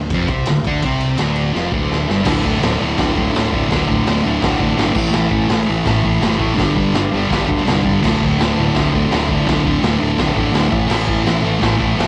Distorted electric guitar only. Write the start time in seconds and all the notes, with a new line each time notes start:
0.13 F2 F3
0.30 C3 C4
0.47 D2
0.66 D3 D4
0.83 C3 C4
1.18 D2 D3
1.53 F2 F3
1.72 D2 D3
2.08 G2 G3
2.24 D2 A2 D3
2.43 A2 D3
2.60 D2 A2 D3
2.78 A2 D3
2.83 D2
2.97 D2 A2 D3
3.14 D2 A2 D3
3.32 D2 A2
3.36 D3
3.52 A2 D3
3.68 D2 A2 D3
3.88 A2 D3
4.05 D2 A2 D3
4.24 D2 A2 D3
4.41 D2 A2 D3
4.60 D2 A2 D3
4.75 D2 A2 D3
4.94 A2 E3 A3
5.11 A2 E3
5.16 A3
5.29 E3 A3
5.48 A2 E3 A3
5.67 A2 E3 A3
5.85 A2 E3 A3
6.04 A2 E3 A3
6.20 A2 E3 A3
6.38 E3 A3
6.55 G2 D3 G3
6.75 D3 G3
6.95 G2 D3 G3
7.12 G2 D3 G3
7.30 G2 D3 G3
7.46 G2 D3 G3
7.65 G2 D3
7.69 G3
7.83 D3 G3
8.01 D2 A2
8.05 D3
8.21 A2 D3
8.39 D2 A2 D3
8.55 A2 D3
8.60 D2
8.74 D2 A2
8.78 D3
8.92 A2 D3
8.96 D2
9.09 D2 A2 D3
9.28 D3
9.32 A2
9.45 D2 A2 D3
9.64 A2 D3
9.80 D2 A2 D3
9.98 A2 D3
10.03 D2
10.18 D2 A2 D3
10.35 A2 D3
10.39 D2
10.52 D2 A2 D3
10.69 A2 E3 A3
10.87 A2 E3
10.92 A3
11.06 E3 A3
11.24 A2 E3 A3
11.41 A2 E3 A3
11.60 A2 E3 A3
11.78 A2 E3 A3
11.96 A2 E3 A3